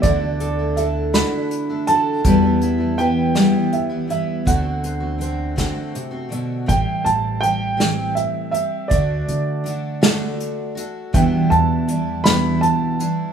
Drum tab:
HH |xxxxxx|xxxxxx|xxxxxx|xxxxxx|
SD |---o--|---o--|---o--|---o--|
BD |o-----|o-----|o--o--|o-----|

HH |xxxxxx|xxxxxx|
SD |---o--|---o--|
BD |o-----|o-----|